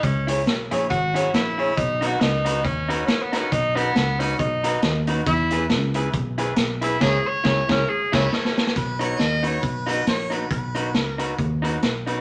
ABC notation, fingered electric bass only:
X:1
M:4/4
L:1/8
Q:"Swing" 1/4=138
K:B
V:1 name="Fingered electric bass" clef=bass
C,,2 B,,, A,,, G,,,2 A,,,2 | B,,,2 C,,2 D,,2 A,,,2 | B,,,2 C,,2 B,,,2 D,,2 | E,,2 C,,2 B,,,2 B,,,2 |
C,, z C,, C,, z C,, z2 | B,,,2 D,,2 B,,,2 A,,,2 | B,,,2 C,,2 D,,2 B,,,2 |]